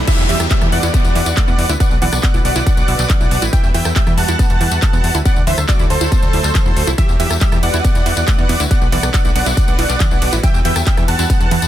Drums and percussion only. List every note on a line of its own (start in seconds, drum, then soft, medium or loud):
0.07 kick loud
0.07 closed hi-hat medium
0.07 crash loud
0.07 tambourine medium
0.18 tambourine soft
0.29 open hi-hat loud
0.40 cross-stick medium
0.40 closed hi-hat medium
0.40 tambourine medium
0.51 kick loud
0.51 clap loud
0.51 closed hi-hat medium
0.51 tambourine medium
0.61 cross-stick medium
0.61 closed hi-hat soft
0.61 tambourine soft
0.72 open hi-hat loud
0.83 closed hi-hat medium
0.83 tambourine medium
0.94 kick loud
0.94 closed hi-hat medium
0.94 tambourine medium
1.05 closed hi-hat soft
1.05 tambourine soft
1.15 open hi-hat loud
1.26 closed hi-hat medium
1.26 tambourine medium
1.37 kick loud
1.37 clap loud
1.37 closed hi-hat medium
1.37 tambourine medium
1.48 tambourine soft
1.59 open hi-hat loud
1.69 closed hi-hat medium
1.69 tambourine medium
1.80 kick loud
1.80 closed hi-hat medium
1.80 tambourine medium
1.91 tambourine soft
2.02 open hi-hat loud
2.13 cross-stick medium
2.13 closed hi-hat medium
2.13 tambourine medium
2.23 kick loud
2.23 clap loud
2.23 closed hi-hat medium
2.23 tambourine medium
2.34 closed hi-hat soft
2.34 tambourine soft
2.45 open hi-hat loud
2.56 closed hi-hat medium
2.56 tambourine medium
2.67 kick loud
2.67 closed hi-hat medium
2.67 tambourine medium
2.77 closed hi-hat soft
2.77 tambourine soft
2.88 open hi-hat loud
2.99 clap soft
2.99 closed hi-hat medium
2.99 tambourine medium
3.10 kick loud
3.10 clap loud
3.10 closed hi-hat medium
3.10 tambourine medium
3.20 tambourine soft
3.31 open hi-hat loud
3.42 closed hi-hat medium
3.42 tambourine medium
3.53 kick loud
3.53 closed hi-hat medium
3.53 tambourine medium
3.64 tambourine soft
3.74 open hi-hat loud
3.85 cross-stick medium
3.85 closed hi-hat medium
3.85 tambourine medium
3.96 kick loud
3.96 clap loud
3.96 closed hi-hat medium
3.96 tambourine medium
4.07 cross-stick medium
4.07 closed hi-hat soft
4.07 tambourine soft
4.18 open hi-hat loud
4.28 closed hi-hat medium
4.28 tambourine medium
4.39 kick loud
4.39 closed hi-hat medium
4.39 tambourine medium
4.50 closed hi-hat soft
4.50 tambourine soft
4.61 open hi-hat loud
4.72 closed hi-hat medium
4.72 tambourine medium
4.82 kick loud
4.82 clap loud
4.82 closed hi-hat medium
4.82 tambourine medium
4.93 tambourine soft
5.04 open hi-hat loud
5.15 closed hi-hat medium
5.15 tambourine medium
5.25 kick loud
5.25 closed hi-hat medium
5.25 tambourine medium
5.36 tambourine soft
5.47 open hi-hat loud
5.58 cross-stick medium
5.58 closed hi-hat medium
5.58 tambourine medium
5.69 kick loud
5.69 clap loud
5.69 closed hi-hat medium
5.69 tambourine medium
5.79 closed hi-hat soft
5.79 tambourine soft
5.90 open hi-hat loud
6.01 closed hi-hat medium
6.01 tambourine medium
6.12 kick loud
6.12 closed hi-hat medium
6.12 tambourine medium
6.23 closed hi-hat soft
6.23 tambourine soft
6.33 open hi-hat loud
6.44 clap soft
6.44 closed hi-hat medium
6.44 tambourine medium
6.55 kick loud
6.55 clap loud
6.55 closed hi-hat medium
6.55 tambourine medium
6.66 tambourine soft
6.77 open hi-hat loud
6.87 closed hi-hat soft
6.87 tambourine medium
6.98 kick loud
6.98 closed hi-hat medium
6.98 ride medium
6.98 tambourine medium
7.09 tambourine soft
7.20 open hi-hat loud
7.20 ride medium
7.31 cross-stick medium
7.31 closed hi-hat medium
7.31 tambourine medium
7.41 kick loud
7.41 clap loud
7.41 closed hi-hat medium
7.41 ride medium
7.41 tambourine medium
7.52 cross-stick medium
7.52 closed hi-hat soft
7.52 tambourine soft
7.63 open hi-hat loud
7.63 ride medium
7.74 closed hi-hat medium
7.74 tambourine medium
7.84 kick loud
7.84 closed hi-hat medium
7.84 ride medium
7.84 tambourine medium
7.95 closed hi-hat soft
7.95 tambourine soft
8.06 open hi-hat loud
8.06 ride medium
8.17 closed hi-hat medium
8.17 tambourine medium
8.28 kick loud
8.28 clap loud
8.28 closed hi-hat medium
8.28 ride medium
8.28 tambourine medium
8.38 tambourine soft
8.49 open hi-hat loud
8.49 ride medium
8.60 closed hi-hat soft
8.60 tambourine medium
8.71 kick loud
8.71 closed hi-hat medium
8.71 ride medium
8.71 tambourine medium
8.82 tambourine soft
8.92 open hi-hat loud
8.92 ride medium
9.03 cross-stick medium
9.03 closed hi-hat medium
9.03 tambourine medium
9.14 kick loud
9.14 clap loud
9.14 closed hi-hat medium
9.14 ride medium
9.14 tambourine medium
9.25 closed hi-hat soft
9.25 tambourine soft
9.36 open hi-hat loud
9.36 ride medium
9.46 closed hi-hat medium
9.46 tambourine medium
9.57 kick loud
9.57 closed hi-hat medium
9.57 ride medium
9.57 tambourine medium
9.68 closed hi-hat soft
9.68 tambourine soft
9.79 open hi-hat loud
9.79 ride medium
9.90 clap soft
9.90 closed hi-hat medium
9.90 tambourine medium
10.00 kick loud
10.00 clap loud
10.00 closed hi-hat medium
10.00 ride medium
10.00 tambourine medium
10.11 tambourine soft
10.22 open hi-hat loud
10.22 ride medium
10.33 closed hi-hat medium
10.33 tambourine medium
10.43 kick loud
10.43 closed hi-hat medium
10.43 ride medium
10.43 tambourine medium
10.54 tambourine soft
10.65 open hi-hat loud
10.65 ride medium
10.76 cross-stick medium
10.76 closed hi-hat medium
10.76 tambourine medium
10.87 kick loud
10.87 clap loud
10.87 closed hi-hat medium
10.87 ride medium
10.87 tambourine medium
10.97 cross-stick medium
10.97 closed hi-hat soft
10.97 tambourine soft
11.08 open hi-hat loud
11.08 ride medium
11.19 closed hi-hat medium
11.19 tambourine medium
11.30 kick loud
11.30 closed hi-hat medium
11.30 ride medium
11.30 tambourine medium
11.41 closed hi-hat soft
11.41 tambourine soft
11.51 open hi-hat loud
11.51 ride medium
11.62 closed hi-hat medium
11.62 tambourine medium